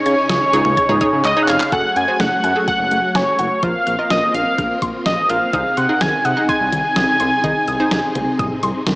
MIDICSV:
0, 0, Header, 1, 7, 480
1, 0, Start_track
1, 0, Tempo, 476190
1, 1738, Time_signature, 4, 2, 24, 8
1, 9025, End_track
2, 0, Start_track
2, 0, Title_t, "Synth arpeggio sound"
2, 0, Program_c, 0, 84
2, 60, Note_on_c, 0, 92, 100
2, 196, Note_off_c, 0, 92, 0
2, 300, Note_on_c, 0, 87, 98
2, 436, Note_off_c, 0, 87, 0
2, 539, Note_on_c, 0, 85, 91
2, 676, Note_off_c, 0, 85, 0
2, 778, Note_on_c, 0, 92, 113
2, 915, Note_off_c, 0, 92, 0
2, 1019, Note_on_c, 0, 87, 96
2, 1156, Note_off_c, 0, 87, 0
2, 1260, Note_on_c, 0, 85, 96
2, 1396, Note_off_c, 0, 85, 0
2, 1499, Note_on_c, 0, 92, 94
2, 1636, Note_off_c, 0, 92, 0
2, 1739, Note_on_c, 0, 80, 111
2, 1876, Note_off_c, 0, 80, 0
2, 1978, Note_on_c, 0, 78, 92
2, 2115, Note_off_c, 0, 78, 0
2, 2219, Note_on_c, 0, 57, 81
2, 2356, Note_off_c, 0, 57, 0
2, 2457, Note_on_c, 0, 80, 94
2, 2595, Note_off_c, 0, 80, 0
2, 2697, Note_on_c, 0, 78, 103
2, 2835, Note_off_c, 0, 78, 0
2, 2937, Note_on_c, 0, 57, 78
2, 3075, Note_off_c, 0, 57, 0
2, 3177, Note_on_c, 0, 80, 102
2, 3315, Note_off_c, 0, 80, 0
2, 3418, Note_on_c, 0, 78, 89
2, 3555, Note_off_c, 0, 78, 0
2, 3658, Note_on_c, 0, 53, 93
2, 3795, Note_off_c, 0, 53, 0
2, 3897, Note_on_c, 0, 89, 99
2, 4035, Note_off_c, 0, 89, 0
2, 4618, Note_on_c, 0, 89, 106
2, 4755, Note_off_c, 0, 89, 0
2, 4859, Note_on_c, 0, 84, 93
2, 4996, Note_off_c, 0, 84, 0
2, 5099, Note_on_c, 0, 53, 81
2, 5236, Note_off_c, 0, 53, 0
2, 5340, Note_on_c, 0, 89, 94
2, 5477, Note_off_c, 0, 89, 0
2, 5580, Note_on_c, 0, 87, 113
2, 5717, Note_off_c, 0, 87, 0
2, 5819, Note_on_c, 0, 84, 94
2, 5956, Note_off_c, 0, 84, 0
2, 6060, Note_on_c, 0, 51, 84
2, 6197, Note_off_c, 0, 51, 0
2, 6299, Note_on_c, 0, 87, 94
2, 6436, Note_off_c, 0, 87, 0
2, 6538, Note_on_c, 0, 84, 104
2, 6675, Note_off_c, 0, 84, 0
2, 6780, Note_on_c, 0, 51, 76
2, 6916, Note_off_c, 0, 51, 0
2, 7019, Note_on_c, 0, 87, 103
2, 7156, Note_off_c, 0, 87, 0
2, 7259, Note_on_c, 0, 84, 88
2, 7396, Note_off_c, 0, 84, 0
2, 7500, Note_on_c, 0, 51, 94
2, 7637, Note_off_c, 0, 51, 0
2, 7741, Note_on_c, 0, 87, 97
2, 7877, Note_off_c, 0, 87, 0
2, 8459, Note_on_c, 0, 87, 109
2, 8596, Note_off_c, 0, 87, 0
2, 8700, Note_on_c, 0, 84, 95
2, 8836, Note_off_c, 0, 84, 0
2, 8939, Note_on_c, 0, 51, 81
2, 9025, Note_off_c, 0, 51, 0
2, 9025, End_track
3, 0, Start_track
3, 0, Title_t, "Analog synth lead"
3, 0, Program_c, 1, 81
3, 0, Note_on_c, 1, 73, 98
3, 1256, Note_off_c, 1, 73, 0
3, 1263, Note_on_c, 1, 75, 100
3, 1438, Note_on_c, 1, 78, 72
3, 1453, Note_off_c, 1, 75, 0
3, 1500, Note_on_c, 1, 77, 102
3, 1515, Note_off_c, 1, 78, 0
3, 1735, Note_off_c, 1, 77, 0
3, 1741, Note_on_c, 1, 78, 110
3, 1980, Note_on_c, 1, 80, 108
3, 1995, Note_off_c, 1, 78, 0
3, 2219, Note_on_c, 1, 78, 103
3, 2234, Note_off_c, 1, 80, 0
3, 2692, Note_off_c, 1, 78, 0
3, 2698, Note_on_c, 1, 78, 104
3, 3182, Note_on_c, 1, 73, 92
3, 3197, Note_off_c, 1, 78, 0
3, 3662, Note_on_c, 1, 77, 102
3, 3677, Note_off_c, 1, 73, 0
3, 4135, Note_off_c, 1, 77, 0
3, 4141, Note_on_c, 1, 75, 89
3, 4363, Note_off_c, 1, 75, 0
3, 4379, Note_on_c, 1, 77, 93
3, 4825, Note_off_c, 1, 77, 0
3, 5099, Note_on_c, 1, 75, 92
3, 5337, Note_on_c, 1, 77, 106
3, 5352, Note_off_c, 1, 75, 0
3, 5818, Note_on_c, 1, 78, 103
3, 5833, Note_off_c, 1, 77, 0
3, 6059, Note_on_c, 1, 80, 105
3, 6074, Note_off_c, 1, 78, 0
3, 6297, Note_on_c, 1, 78, 104
3, 6313, Note_off_c, 1, 80, 0
3, 6533, Note_off_c, 1, 78, 0
3, 6539, Note_on_c, 1, 80, 113
3, 8898, Note_off_c, 1, 80, 0
3, 9025, End_track
4, 0, Start_track
4, 0, Title_t, "Synth pluck"
4, 0, Program_c, 2, 84
4, 0, Note_on_c, 2, 63, 79
4, 0, Note_on_c, 2, 68, 74
4, 0, Note_on_c, 2, 75, 89
4, 246, Note_off_c, 2, 63, 0
4, 246, Note_off_c, 2, 68, 0
4, 246, Note_off_c, 2, 75, 0
4, 537, Note_on_c, 2, 68, 88
4, 538, Note_on_c, 2, 63, 96
4, 538, Note_on_c, 2, 73, 106
4, 752, Note_off_c, 2, 63, 0
4, 752, Note_off_c, 2, 68, 0
4, 752, Note_off_c, 2, 73, 0
4, 899, Note_on_c, 2, 63, 93
4, 900, Note_on_c, 2, 68, 86
4, 900, Note_on_c, 2, 73, 102
4, 970, Note_off_c, 2, 63, 0
4, 970, Note_off_c, 2, 68, 0
4, 970, Note_off_c, 2, 73, 0
4, 1018, Note_on_c, 2, 73, 102
4, 1019, Note_on_c, 2, 63, 92
4, 1019, Note_on_c, 2, 68, 82
4, 1232, Note_off_c, 2, 73, 0
4, 1233, Note_off_c, 2, 63, 0
4, 1233, Note_off_c, 2, 68, 0
4, 1377, Note_on_c, 2, 63, 93
4, 1377, Note_on_c, 2, 68, 84
4, 1377, Note_on_c, 2, 73, 105
4, 1592, Note_off_c, 2, 63, 0
4, 1592, Note_off_c, 2, 68, 0
4, 1592, Note_off_c, 2, 73, 0
4, 1738, Note_on_c, 2, 66, 77
4, 1738, Note_on_c, 2, 69, 86
4, 1739, Note_on_c, 2, 68, 69
4, 1952, Note_off_c, 2, 66, 0
4, 1952, Note_off_c, 2, 69, 0
4, 1953, Note_off_c, 2, 68, 0
4, 2096, Note_on_c, 2, 66, 77
4, 2096, Note_on_c, 2, 72, 88
4, 2097, Note_on_c, 2, 68, 69
4, 2383, Note_off_c, 2, 66, 0
4, 2383, Note_off_c, 2, 68, 0
4, 2383, Note_off_c, 2, 72, 0
4, 2577, Note_on_c, 2, 66, 77
4, 2577, Note_on_c, 2, 68, 73
4, 2577, Note_on_c, 2, 69, 84
4, 3148, Note_off_c, 2, 66, 0
4, 3148, Note_off_c, 2, 69, 0
4, 3149, Note_off_c, 2, 68, 0
4, 3658, Note_on_c, 2, 70, 70
4, 3658, Note_on_c, 2, 72, 85
4, 3659, Note_on_c, 2, 65, 76
4, 3872, Note_off_c, 2, 70, 0
4, 3872, Note_off_c, 2, 72, 0
4, 3873, Note_off_c, 2, 65, 0
4, 4019, Note_on_c, 2, 65, 74
4, 4019, Note_on_c, 2, 70, 70
4, 4020, Note_on_c, 2, 75, 86
4, 4590, Note_off_c, 2, 65, 0
4, 4590, Note_off_c, 2, 70, 0
4, 4590, Note_off_c, 2, 75, 0
4, 5340, Note_on_c, 2, 65, 75
4, 5340, Note_on_c, 2, 70, 70
4, 5340, Note_on_c, 2, 72, 85
4, 5482, Note_off_c, 2, 65, 0
4, 5482, Note_off_c, 2, 70, 0
4, 5482, Note_off_c, 2, 72, 0
4, 5578, Note_on_c, 2, 63, 79
4, 5578, Note_on_c, 2, 72, 84
4, 5579, Note_on_c, 2, 68, 73
4, 5792, Note_off_c, 2, 63, 0
4, 5792, Note_off_c, 2, 72, 0
4, 5793, Note_off_c, 2, 68, 0
4, 5938, Note_on_c, 2, 70, 86
4, 5939, Note_on_c, 2, 63, 75
4, 5939, Note_on_c, 2, 68, 72
4, 6224, Note_off_c, 2, 63, 0
4, 6224, Note_off_c, 2, 68, 0
4, 6224, Note_off_c, 2, 70, 0
4, 6420, Note_on_c, 2, 63, 81
4, 6420, Note_on_c, 2, 68, 75
4, 6420, Note_on_c, 2, 75, 89
4, 6990, Note_off_c, 2, 63, 0
4, 6990, Note_off_c, 2, 68, 0
4, 6990, Note_off_c, 2, 75, 0
4, 7501, Note_on_c, 2, 63, 91
4, 7501, Note_on_c, 2, 75, 103
4, 7502, Note_on_c, 2, 68, 86
4, 7713, Note_off_c, 2, 63, 0
4, 7714, Note_off_c, 2, 68, 0
4, 7714, Note_off_c, 2, 75, 0
4, 7862, Note_on_c, 2, 63, 95
4, 7862, Note_on_c, 2, 68, 86
4, 7862, Note_on_c, 2, 72, 102
4, 8431, Note_off_c, 2, 63, 0
4, 8431, Note_off_c, 2, 68, 0
4, 8431, Note_off_c, 2, 72, 0
4, 9025, End_track
5, 0, Start_track
5, 0, Title_t, "String machine"
5, 0, Program_c, 3, 50
5, 0, Note_on_c, 3, 49, 83
5, 0, Note_on_c, 3, 61, 74
5, 0, Note_on_c, 3, 63, 91
5, 0, Note_on_c, 3, 68, 91
5, 1697, Note_off_c, 3, 63, 0
5, 1699, Note_off_c, 3, 49, 0
5, 1699, Note_off_c, 3, 61, 0
5, 1699, Note_off_c, 3, 68, 0
5, 1736, Note_on_c, 3, 61, 73
5, 1736, Note_on_c, 3, 80, 72
5, 1737, Note_on_c, 3, 54, 81
5, 1737, Note_on_c, 3, 57, 87
5, 3638, Note_off_c, 3, 54, 0
5, 3638, Note_off_c, 3, 57, 0
5, 3638, Note_off_c, 3, 61, 0
5, 3638, Note_off_c, 3, 80, 0
5, 3656, Note_on_c, 3, 65, 86
5, 3657, Note_on_c, 3, 60, 75
5, 3658, Note_on_c, 3, 58, 78
5, 5558, Note_off_c, 3, 65, 0
5, 5559, Note_off_c, 3, 58, 0
5, 5579, Note_on_c, 3, 48, 79
5, 5582, Note_on_c, 3, 63, 73
5, 5582, Note_on_c, 3, 68, 87
5, 9025, Note_off_c, 3, 48, 0
5, 9025, Note_off_c, 3, 60, 0
5, 9025, Note_off_c, 3, 63, 0
5, 9025, Note_off_c, 3, 68, 0
5, 9025, End_track
6, 0, Start_track
6, 0, Title_t, "Analog synth bass"
6, 0, Program_c, 4, 38
6, 57, Note_on_c, 4, 49, 111
6, 151, Note_off_c, 4, 49, 0
6, 296, Note_on_c, 4, 37, 107
6, 390, Note_off_c, 4, 37, 0
6, 536, Note_on_c, 4, 37, 94
6, 630, Note_off_c, 4, 37, 0
6, 656, Note_on_c, 4, 37, 100
6, 750, Note_off_c, 4, 37, 0
6, 897, Note_on_c, 4, 37, 97
6, 990, Note_off_c, 4, 37, 0
6, 1137, Note_on_c, 4, 49, 107
6, 1230, Note_off_c, 4, 49, 0
6, 1257, Note_on_c, 4, 37, 108
6, 1350, Note_off_c, 4, 37, 0
6, 1497, Note_on_c, 4, 29, 95
6, 1590, Note_off_c, 4, 29, 0
6, 1737, Note_on_c, 4, 30, 105
6, 1830, Note_off_c, 4, 30, 0
6, 1976, Note_on_c, 4, 42, 101
6, 2070, Note_off_c, 4, 42, 0
6, 2216, Note_on_c, 4, 30, 104
6, 2310, Note_off_c, 4, 30, 0
6, 2457, Note_on_c, 4, 42, 101
6, 2550, Note_off_c, 4, 42, 0
6, 2816, Note_on_c, 4, 30, 90
6, 2910, Note_off_c, 4, 30, 0
6, 2936, Note_on_c, 4, 30, 93
6, 3030, Note_off_c, 4, 30, 0
6, 3177, Note_on_c, 4, 30, 103
6, 3271, Note_off_c, 4, 30, 0
6, 3418, Note_on_c, 4, 30, 102
6, 3511, Note_off_c, 4, 30, 0
6, 3658, Note_on_c, 4, 34, 99
6, 3751, Note_off_c, 4, 34, 0
6, 3898, Note_on_c, 4, 34, 99
6, 3991, Note_off_c, 4, 34, 0
6, 4138, Note_on_c, 4, 34, 98
6, 4231, Note_off_c, 4, 34, 0
6, 4378, Note_on_c, 4, 34, 102
6, 4471, Note_off_c, 4, 34, 0
6, 4622, Note_on_c, 4, 34, 113
6, 4713, Note_off_c, 4, 34, 0
6, 4859, Note_on_c, 4, 34, 101
6, 4951, Note_off_c, 4, 34, 0
6, 5098, Note_on_c, 4, 34, 107
6, 5191, Note_off_c, 4, 34, 0
6, 5339, Note_on_c, 4, 34, 91
6, 5431, Note_off_c, 4, 34, 0
6, 5579, Note_on_c, 4, 36, 107
6, 5672, Note_off_c, 4, 36, 0
6, 5820, Note_on_c, 4, 48, 105
6, 5912, Note_off_c, 4, 48, 0
6, 6059, Note_on_c, 4, 36, 102
6, 6152, Note_off_c, 4, 36, 0
6, 6299, Note_on_c, 4, 48, 97
6, 6392, Note_off_c, 4, 48, 0
6, 6661, Note_on_c, 4, 36, 104
6, 6753, Note_off_c, 4, 36, 0
6, 6779, Note_on_c, 4, 36, 103
6, 6872, Note_off_c, 4, 36, 0
6, 7020, Note_on_c, 4, 36, 97
6, 7112, Note_off_c, 4, 36, 0
6, 7261, Note_on_c, 4, 36, 101
6, 7353, Note_off_c, 4, 36, 0
6, 7498, Note_on_c, 4, 36, 101
6, 7591, Note_off_c, 4, 36, 0
6, 7740, Note_on_c, 4, 36, 113
6, 7832, Note_off_c, 4, 36, 0
6, 7979, Note_on_c, 4, 36, 100
6, 8072, Note_off_c, 4, 36, 0
6, 8219, Note_on_c, 4, 36, 100
6, 8312, Note_off_c, 4, 36, 0
6, 8461, Note_on_c, 4, 36, 99
6, 8553, Note_off_c, 4, 36, 0
6, 8699, Note_on_c, 4, 36, 103
6, 8792, Note_off_c, 4, 36, 0
6, 8940, Note_on_c, 4, 36, 102
6, 9025, Note_off_c, 4, 36, 0
6, 9025, End_track
7, 0, Start_track
7, 0, Title_t, "Drums"
7, 58, Note_on_c, 9, 42, 73
7, 159, Note_off_c, 9, 42, 0
7, 297, Note_on_c, 9, 42, 81
7, 298, Note_on_c, 9, 38, 125
7, 398, Note_off_c, 9, 38, 0
7, 398, Note_off_c, 9, 42, 0
7, 538, Note_on_c, 9, 42, 80
7, 639, Note_off_c, 9, 42, 0
7, 655, Note_on_c, 9, 47, 97
7, 756, Note_off_c, 9, 47, 0
7, 778, Note_on_c, 9, 42, 71
7, 780, Note_on_c, 9, 36, 98
7, 879, Note_off_c, 9, 42, 0
7, 881, Note_off_c, 9, 36, 0
7, 898, Note_on_c, 9, 45, 93
7, 999, Note_off_c, 9, 45, 0
7, 1016, Note_on_c, 9, 42, 85
7, 1016, Note_on_c, 9, 56, 68
7, 1018, Note_on_c, 9, 36, 94
7, 1116, Note_off_c, 9, 56, 0
7, 1117, Note_off_c, 9, 42, 0
7, 1119, Note_off_c, 9, 36, 0
7, 1257, Note_on_c, 9, 39, 62
7, 1257, Note_on_c, 9, 42, 67
7, 1357, Note_off_c, 9, 39, 0
7, 1358, Note_off_c, 9, 42, 0
7, 1494, Note_on_c, 9, 42, 76
7, 1496, Note_on_c, 9, 39, 95
7, 1594, Note_off_c, 9, 42, 0
7, 1597, Note_off_c, 9, 39, 0
7, 1616, Note_on_c, 9, 39, 98
7, 1717, Note_off_c, 9, 39, 0
7, 1736, Note_on_c, 9, 42, 72
7, 1737, Note_on_c, 9, 36, 108
7, 1837, Note_off_c, 9, 42, 0
7, 1838, Note_off_c, 9, 36, 0
7, 1977, Note_on_c, 9, 42, 69
7, 2078, Note_off_c, 9, 42, 0
7, 2215, Note_on_c, 9, 42, 75
7, 2216, Note_on_c, 9, 38, 114
7, 2316, Note_off_c, 9, 38, 0
7, 2316, Note_off_c, 9, 42, 0
7, 2457, Note_on_c, 9, 42, 74
7, 2558, Note_off_c, 9, 42, 0
7, 2698, Note_on_c, 9, 42, 70
7, 2700, Note_on_c, 9, 36, 92
7, 2799, Note_off_c, 9, 42, 0
7, 2801, Note_off_c, 9, 36, 0
7, 2936, Note_on_c, 9, 42, 82
7, 3037, Note_off_c, 9, 42, 0
7, 3175, Note_on_c, 9, 38, 111
7, 3177, Note_on_c, 9, 42, 64
7, 3276, Note_off_c, 9, 38, 0
7, 3278, Note_off_c, 9, 42, 0
7, 3414, Note_on_c, 9, 42, 73
7, 3515, Note_off_c, 9, 42, 0
7, 3656, Note_on_c, 9, 42, 72
7, 3658, Note_on_c, 9, 36, 107
7, 3757, Note_off_c, 9, 42, 0
7, 3758, Note_off_c, 9, 36, 0
7, 3898, Note_on_c, 9, 42, 72
7, 3999, Note_off_c, 9, 42, 0
7, 4136, Note_on_c, 9, 42, 76
7, 4137, Note_on_c, 9, 38, 116
7, 4237, Note_off_c, 9, 42, 0
7, 4238, Note_off_c, 9, 38, 0
7, 4379, Note_on_c, 9, 42, 75
7, 4480, Note_off_c, 9, 42, 0
7, 4621, Note_on_c, 9, 36, 93
7, 4621, Note_on_c, 9, 42, 69
7, 4721, Note_off_c, 9, 42, 0
7, 4722, Note_off_c, 9, 36, 0
7, 4858, Note_on_c, 9, 42, 85
7, 4859, Note_on_c, 9, 36, 87
7, 4959, Note_off_c, 9, 42, 0
7, 4960, Note_off_c, 9, 36, 0
7, 5098, Note_on_c, 9, 38, 110
7, 5100, Note_on_c, 9, 42, 63
7, 5199, Note_off_c, 9, 38, 0
7, 5201, Note_off_c, 9, 42, 0
7, 5337, Note_on_c, 9, 42, 74
7, 5438, Note_off_c, 9, 42, 0
7, 5577, Note_on_c, 9, 42, 71
7, 5579, Note_on_c, 9, 36, 109
7, 5678, Note_off_c, 9, 42, 0
7, 5680, Note_off_c, 9, 36, 0
7, 5818, Note_on_c, 9, 42, 73
7, 5919, Note_off_c, 9, 42, 0
7, 6057, Note_on_c, 9, 42, 78
7, 6058, Note_on_c, 9, 38, 122
7, 6158, Note_off_c, 9, 42, 0
7, 6159, Note_off_c, 9, 38, 0
7, 6300, Note_on_c, 9, 42, 76
7, 6401, Note_off_c, 9, 42, 0
7, 6542, Note_on_c, 9, 36, 91
7, 6542, Note_on_c, 9, 42, 71
7, 6643, Note_off_c, 9, 36, 0
7, 6643, Note_off_c, 9, 42, 0
7, 6779, Note_on_c, 9, 42, 85
7, 6880, Note_off_c, 9, 42, 0
7, 7017, Note_on_c, 9, 38, 112
7, 7019, Note_on_c, 9, 42, 61
7, 7118, Note_off_c, 9, 38, 0
7, 7120, Note_off_c, 9, 42, 0
7, 7256, Note_on_c, 9, 42, 74
7, 7357, Note_off_c, 9, 42, 0
7, 7498, Note_on_c, 9, 42, 72
7, 7499, Note_on_c, 9, 36, 113
7, 7598, Note_off_c, 9, 42, 0
7, 7599, Note_off_c, 9, 36, 0
7, 7738, Note_on_c, 9, 42, 70
7, 7838, Note_off_c, 9, 42, 0
7, 7976, Note_on_c, 9, 42, 82
7, 7977, Note_on_c, 9, 38, 123
7, 8077, Note_off_c, 9, 42, 0
7, 8078, Note_off_c, 9, 38, 0
7, 8218, Note_on_c, 9, 42, 78
7, 8221, Note_on_c, 9, 47, 87
7, 8319, Note_off_c, 9, 42, 0
7, 8322, Note_off_c, 9, 47, 0
7, 8460, Note_on_c, 9, 42, 68
7, 8461, Note_on_c, 9, 36, 93
7, 8461, Note_on_c, 9, 45, 94
7, 8561, Note_off_c, 9, 42, 0
7, 8562, Note_off_c, 9, 36, 0
7, 8562, Note_off_c, 9, 45, 0
7, 8698, Note_on_c, 9, 42, 89
7, 8799, Note_off_c, 9, 42, 0
7, 8937, Note_on_c, 9, 38, 112
7, 8939, Note_on_c, 9, 42, 64
7, 9025, Note_off_c, 9, 38, 0
7, 9025, Note_off_c, 9, 42, 0
7, 9025, End_track
0, 0, End_of_file